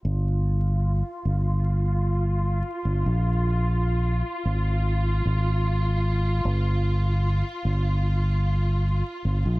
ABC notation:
X:1
M:4/4
L:1/16
Q:1/4=75
K:F
V:1 name="Violin section"
F16- | F16- | F16 |]
V:2 name="Fingered electric bass" clef=bass
G,,,4- G,,, z G,,,6- G,,, z G,,, B,,,- | B,,,4- B,,, z _A,,,4 A,,,6 | G,,,4- G,,, z G,,,6- G,,, z G,,, B,,, |]